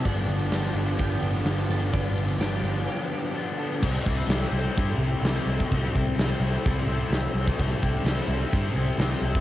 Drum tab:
CC |----------------|----------------|x---x---x---x---|x---x---x---x---|
RD |x-x-x-x-x-x-x-x-|x-x-x-x---------|----------------|----------------|
SD |----o------oo---|----o-----------|----o-------o---|----o-------o---|
BD |o-------o-------|o---------------|o-o-----o------o|o-o-----o------o|

CC |x---x---x---x---|
RD |----------------|
SD |----o-------o---|
BD |o-o-----o------o|